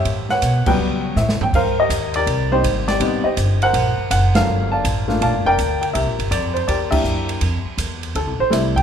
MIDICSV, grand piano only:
0, 0, Header, 1, 2, 480
1, 0, Start_track
1, 0, Key_signature, -1, "major"
1, 0, Tempo, 368098
1, 74, Time_signature, 4, 2, 24, 8
1, 11510, End_track
2, 0, Start_track
2, 0, Title_t, "Grand piano"
2, 0, Program_c, 0, 0
2, 0, Note_on_c, 0, 67, 64
2, 0, Note_on_c, 0, 73, 65
2, 0, Note_on_c, 0, 76, 92
2, 387, Note_off_c, 0, 73, 0
2, 397, Note_on_c, 0, 78, 96
2, 407, Note_off_c, 0, 76, 0
2, 407, Note_on_c, 0, 73, 62
2, 408, Note_on_c, 0, 71, 61
2, 825, Note_off_c, 0, 67, 0
2, 842, Note_off_c, 0, 78, 0
2, 861, Note_off_c, 0, 71, 0
2, 867, Note_off_c, 0, 73, 0
2, 868, Note_on_c, 0, 55, 75
2, 871, Note_on_c, 0, 59, 67
2, 872, Note_on_c, 0, 79, 95
2, 879, Note_on_c, 0, 61, 60
2, 880, Note_on_c, 0, 71, 67
2, 887, Note_on_c, 0, 73, 73
2, 888, Note_on_c, 0, 54, 75
2, 1480, Note_off_c, 0, 55, 0
2, 1482, Note_off_c, 0, 59, 0
2, 1486, Note_off_c, 0, 61, 0
2, 1490, Note_off_c, 0, 54, 0
2, 1526, Note_on_c, 0, 76, 82
2, 1534, Note_off_c, 0, 79, 0
2, 1785, Note_off_c, 0, 71, 0
2, 1788, Note_off_c, 0, 73, 0
2, 1848, Note_off_c, 0, 76, 0
2, 1864, Note_on_c, 0, 79, 88
2, 2015, Note_off_c, 0, 79, 0
2, 2023, Note_on_c, 0, 77, 95
2, 2029, Note_on_c, 0, 70, 70
2, 2034, Note_on_c, 0, 72, 74
2, 2091, Note_off_c, 0, 77, 0
2, 2325, Note_off_c, 0, 72, 0
2, 2343, Note_on_c, 0, 75, 93
2, 2344, Note_on_c, 0, 72, 52
2, 2355, Note_on_c, 0, 67, 54
2, 2809, Note_off_c, 0, 67, 0
2, 2812, Note_off_c, 0, 70, 0
2, 2814, Note_on_c, 0, 74, 99
2, 2822, Note_off_c, 0, 75, 0
2, 2828, Note_on_c, 0, 67, 60
2, 2832, Note_on_c, 0, 70, 66
2, 3236, Note_off_c, 0, 72, 0
2, 3276, Note_on_c, 0, 55, 56
2, 3278, Note_off_c, 0, 67, 0
2, 3281, Note_on_c, 0, 58, 54
2, 3287, Note_on_c, 0, 60, 48
2, 3287, Note_on_c, 0, 72, 104
2, 3289, Note_on_c, 0, 63, 70
2, 3297, Note_off_c, 0, 74, 0
2, 3298, Note_on_c, 0, 67, 77
2, 3720, Note_off_c, 0, 70, 0
2, 3753, Note_off_c, 0, 67, 0
2, 3754, Note_on_c, 0, 74, 94
2, 3772, Note_on_c, 0, 67, 63
2, 3774, Note_off_c, 0, 72, 0
2, 3879, Note_off_c, 0, 63, 0
2, 3884, Note_off_c, 0, 55, 0
2, 3887, Note_off_c, 0, 58, 0
2, 3889, Note_off_c, 0, 60, 0
2, 3910, Note_on_c, 0, 55, 63
2, 3919, Note_on_c, 0, 60, 62
2, 3921, Note_on_c, 0, 59, 64
2, 3928, Note_on_c, 0, 63, 69
2, 4198, Note_off_c, 0, 55, 0
2, 4203, Note_off_c, 0, 60, 0
2, 4204, Note_off_c, 0, 59, 0
2, 4207, Note_off_c, 0, 63, 0
2, 4215, Note_off_c, 0, 67, 0
2, 4225, Note_on_c, 0, 75, 69
2, 4234, Note_on_c, 0, 67, 62
2, 4246, Note_on_c, 0, 72, 52
2, 4248, Note_off_c, 0, 74, 0
2, 4675, Note_off_c, 0, 75, 0
2, 4719, Note_off_c, 0, 72, 0
2, 4730, Note_on_c, 0, 78, 109
2, 4738, Note_on_c, 0, 72, 73
2, 4741, Note_on_c, 0, 70, 69
2, 4831, Note_off_c, 0, 67, 0
2, 5319, Note_off_c, 0, 78, 0
2, 5358, Note_on_c, 0, 78, 91
2, 5633, Note_off_c, 0, 72, 0
2, 5634, Note_off_c, 0, 70, 0
2, 5676, Note_on_c, 0, 77, 101
2, 5679, Note_on_c, 0, 54, 59
2, 5679, Note_on_c, 0, 58, 53
2, 5682, Note_on_c, 0, 69, 60
2, 5682, Note_on_c, 0, 70, 66
2, 5683, Note_off_c, 0, 78, 0
2, 5684, Note_on_c, 0, 62, 49
2, 5694, Note_on_c, 0, 65, 55
2, 6121, Note_off_c, 0, 77, 0
2, 6151, Note_on_c, 0, 81, 92
2, 6166, Note_on_c, 0, 77, 63
2, 6171, Note_on_c, 0, 74, 54
2, 6285, Note_off_c, 0, 54, 0
2, 6285, Note_off_c, 0, 58, 0
2, 6288, Note_off_c, 0, 62, 0
2, 6293, Note_off_c, 0, 65, 0
2, 6585, Note_off_c, 0, 69, 0
2, 6585, Note_off_c, 0, 70, 0
2, 6623, Note_on_c, 0, 57, 66
2, 6633, Note_on_c, 0, 58, 65
2, 6636, Note_on_c, 0, 62, 64
2, 6637, Note_on_c, 0, 65, 76
2, 6791, Note_off_c, 0, 81, 0
2, 6798, Note_off_c, 0, 74, 0
2, 6799, Note_off_c, 0, 77, 0
2, 6810, Note_on_c, 0, 81, 93
2, 6818, Note_on_c, 0, 74, 72
2, 6819, Note_on_c, 0, 77, 68
2, 6880, Note_off_c, 0, 81, 0
2, 7112, Note_off_c, 0, 74, 0
2, 7124, Note_on_c, 0, 79, 121
2, 7132, Note_on_c, 0, 74, 81
2, 7133, Note_on_c, 0, 70, 79
2, 7237, Note_off_c, 0, 57, 0
2, 7242, Note_off_c, 0, 58, 0
2, 7243, Note_off_c, 0, 62, 0
2, 7244, Note_off_c, 0, 65, 0
2, 7562, Note_off_c, 0, 79, 0
2, 7581, Note_on_c, 0, 79, 80
2, 7646, Note_off_c, 0, 79, 0
2, 7714, Note_off_c, 0, 77, 0
2, 7720, Note_off_c, 0, 70, 0
2, 7720, Note_off_c, 0, 74, 0
2, 7739, Note_on_c, 0, 76, 88
2, 7750, Note_on_c, 0, 67, 64
2, 7756, Note_on_c, 0, 70, 61
2, 8193, Note_off_c, 0, 76, 0
2, 8233, Note_on_c, 0, 74, 79
2, 8526, Note_on_c, 0, 72, 78
2, 8561, Note_off_c, 0, 74, 0
2, 8660, Note_off_c, 0, 67, 0
2, 8663, Note_off_c, 0, 70, 0
2, 8706, Note_off_c, 0, 72, 0
2, 8707, Note_on_c, 0, 74, 83
2, 8722, Note_on_c, 0, 67, 60
2, 8726, Note_on_c, 0, 70, 57
2, 8987, Note_off_c, 0, 67, 0
2, 9004, Note_off_c, 0, 70, 0
2, 9006, Note_off_c, 0, 74, 0
2, 9006, Note_on_c, 0, 67, 73
2, 9006, Note_on_c, 0, 76, 99
2, 9009, Note_on_c, 0, 58, 63
2, 9015, Note_on_c, 0, 62, 65
2, 9024, Note_on_c, 0, 70, 65
2, 9026, Note_on_c, 0, 64, 69
2, 9465, Note_off_c, 0, 76, 0
2, 9625, Note_off_c, 0, 70, 0
2, 9629, Note_off_c, 0, 67, 0
2, 9631, Note_off_c, 0, 58, 0
2, 9634, Note_off_c, 0, 62, 0
2, 9639, Note_off_c, 0, 64, 0
2, 10640, Note_on_c, 0, 69, 72
2, 10946, Note_off_c, 0, 69, 0
2, 10957, Note_on_c, 0, 72, 95
2, 11085, Note_on_c, 0, 55, 69
2, 11092, Note_on_c, 0, 57, 57
2, 11094, Note_on_c, 0, 60, 60
2, 11103, Note_on_c, 0, 64, 73
2, 11113, Note_off_c, 0, 72, 0
2, 11122, Note_on_c, 0, 76, 72
2, 11426, Note_on_c, 0, 79, 101
2, 11427, Note_off_c, 0, 76, 0
2, 11510, Note_off_c, 0, 55, 0
2, 11510, Note_off_c, 0, 57, 0
2, 11510, Note_off_c, 0, 60, 0
2, 11510, Note_off_c, 0, 64, 0
2, 11510, Note_off_c, 0, 79, 0
2, 11510, End_track
0, 0, End_of_file